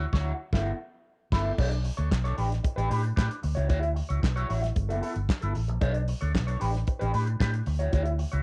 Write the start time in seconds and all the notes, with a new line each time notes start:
0.13 D2 E4 F#4 C#5, kick, snare
0.53 G1 B3 E4 A4, kick, snare
1.32 G1 B3 E4 A4, kick, snare, crash
1.58 B1 D4 A4 C#5, kick, crash
1.71 muted clean electric guitar stroke, closed hi-hat
1.84 muted clean electric guitar stroke, open hi-hat
1.97 D2 D4 A4 C#5, closed hi-hat
2.11 B1, muted clean electric guitar stroke, kick, snare, clap
2.24 D4 A4 C#5, closed hi-hat
2.37 A1 D4 G4 B4, open hi-hat
2.50 muted clean electric guitar stroke, snare, closed hi-hat
2.64 muted clean electric guitar stroke, kick, closed hi-hat
2.76 A1 D4 G4 B4, closed hi-hat
2.90 A2 D4 G4 B4, open hi-hat
3.04 muted clean electric guitar stroke, closed hi-hat
3.16 A2 D4 G4 B4, kick, snare, clap
3.30 muted clean electric guitar stroke, closed hi-hat
3.43 D2, muted clean electric guitar stroke, open hi-hat
3.55 C#2 E4 F#4 C#5, closed hi-hat
3.69 D2 E4 F#4 C#5, kick, closed hi-hat
3.81 muted clean electric guitar stroke, closed hi-hat
3.95 muted clean electric guitar stroke, open hi-hat
4.09 C#2 E4 F#4 C#5, closed hi-hat
4.22 B1, muted clean electric guitar stroke, kick, snare, clap
4.36 E4 F#4 C#5, closed hi-hat
4.49 A1 E4 F#4 C#5, open hi-hat
4.63 muted clean electric guitar stroke, snare, closed hi-hat
4.75 G1, muted clean electric guitar stroke, kick, closed hi-hat
4.89 F#1 B3 E4 A4, closed hi-hat
5.01 B3 E4 A4, open hi-hat
5.14 G1, muted clean electric guitar stroke, closed hi-hat
5.29 muted clean electric guitar stroke, kick, snare, clap
5.41 G1 B3 E4 A4, closed hi-hat
5.55 A1, open hi-hat
5.68 A#1, muted clean electric guitar stroke, closed hi-hat
5.81 B1 D4 A4 C#5, kick, closed hi-hat
5.94 muted clean electric guitar stroke, closed hi-hat
6.08 muted clean electric guitar stroke, open hi-hat
6.21 D2 D4 A4 C#5, closed hi-hat
6.34 B1, muted clean electric guitar stroke, kick, snare, clap
6.47 D4 A4 C#5, closed hi-hat
6.60 A1 D4 G4 B4, open hi-hat
6.73 muted clean electric guitar stroke, snare, closed hi-hat
6.87 muted clean electric guitar stroke, kick, closed hi-hat
6.99 A1 D4 G4 B4, closed hi-hat
7.13 A2 D4 G4 B4, open hi-hat
7.26 muted clean electric guitar stroke, closed hi-hat
7.40 A2 D4 G4 B4, kick, snare, clap
7.53 muted clean electric guitar stroke, closed hi-hat
7.66 D2, muted clean electric guitar stroke, open hi-hat
7.79 E4 F#4 C#5, closed hi-hat
7.92 D2 E4 F#4 C#5, kick, closed hi-hat
8.05 muted clean electric guitar stroke, closed hi-hat
8.18 muted clean electric guitar stroke, open hi-hat
8.32 C#2 E4 F#4 C#5, closed hi-hat